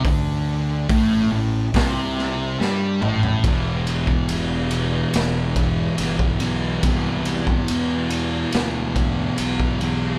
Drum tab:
RD |----------------|x-x-x-x-x-x-x-x-|x-x-x-x-x-x-x-x-|
HH |o---o---o-------|----------------|----------------|
SD |--------o-o-o---|--------o---o---|--------o-------|
T2 |--------------o-|----------------|----------------|
FT |---------------o|----------------|----------------|
BD |o---o---o-------|o--o------o--o--|o--o------o--o--|